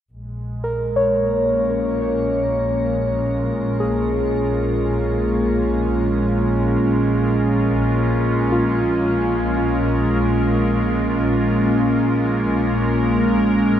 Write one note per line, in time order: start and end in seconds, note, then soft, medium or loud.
0.11 13.80 A#1 medium
0.11 13.80 G#3 medium
0.64 3.77 A#4 soft
0.94 13.80 A#3 medium
0.94 4.07 C#5 soft
1.13 13.80 F4 medium
1.24 13.80 A#4 medium
1.35 13.80 C#4 medium
3.80 6.93 G#4 soft
8.52 11.66 F4 medium